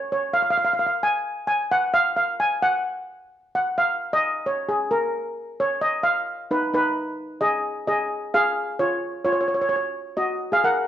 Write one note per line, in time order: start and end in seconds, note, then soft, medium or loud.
0.00 0.11 C#5 medium
0.12 0.35 C#5 medium
0.33 0.41 F5 medium
0.42 0.49 F5 medium
0.50 0.56 F5 medium
0.58 0.63 F5 medium
0.65 0.71 F5 medium
0.73 0.78 F5 medium
0.79 0.85 F5 medium
0.87 0.93 F5 medium
1.03 1.24 G#5 medium
1.47 1.69 G#5 medium
1.72 1.95 F#5 loud
1.94 2.15 F5 loud
2.16 2.38 F5 medium
2.40 2.63 G#5 medium
2.62 3.54 F#5 loud
3.55 3.76 F#5 medium
3.78 4.13 F5 medium
4.13 4.47 D#5 loud
4.46 4.69 C#5 medium
4.69 4.92 G#4 medium
4.91 5.34 A#4 medium
5.60 5.83 C#5 medium
5.81 6.06 D#5 medium
6.03 6.47 F5 medium
6.51 6.72 D#4 medium
6.51 6.73 B4 medium
6.74 7.38 D#4 medium
6.74 7.45 B4 loud
7.41 7.84 G#4 medium
7.41 7.84 D#5 medium
7.87 8.31 G#4 medium
7.87 8.30 D#5 medium
8.34 8.77 G#4 medium
8.34 8.81 F5 loud
8.79 9.22 F4 medium
8.79 9.23 C#5 medium
9.25 9.33 F4 medium
9.25 9.31 C#5 medium
9.33 9.40 C#5 medium
9.41 9.47 C#5 medium
9.48 9.53 C#5 medium
9.54 9.60 C#5 medium
9.62 9.68 C#5 medium
9.69 9.75 C#5 medium
9.76 9.84 C#5 medium
10.17 10.49 F#4 medium
10.17 10.49 D#5 medium
10.52 10.57 G#4 medium
10.52 10.58 F5 loud
10.64 10.88 A#4 medium
10.64 10.88 F#5 loud